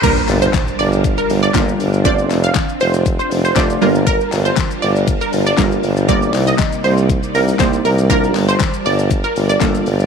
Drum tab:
CC |x---------------|----------------|----------------|----------------|
HH |x-o-x-o-x-o-x-o-|x-o-x-o-x-o-x-o-|x-o-x-o-x-o-x-o-|x-o-x-o-x-o-x-o-|
SH |xxxxxxxxxxxxxxxx|xxxxxxxxxxxxxxxx|xxxxxxxxxxxxxxxx|xxxxxxxxxxxxxxxx|
CP |--x-x-------x---|--x-x-------x---|--x-x-------x---|--x-x-------x---|
SD |----o-------o---|----o-------o---|----o-------o---|----o-------o---|
BD |o---o---o---o---|o---o---o---o---|o---o---o---o---|o---o---o---o---|

CC |----------------|
HH |x-o-x-o-x-o-x-o-|
SH |xxxxxxxxxxxxxxxx|
CP |--x-x-------x---|
SD |----o-------o---|
BD |o---o---o---o---|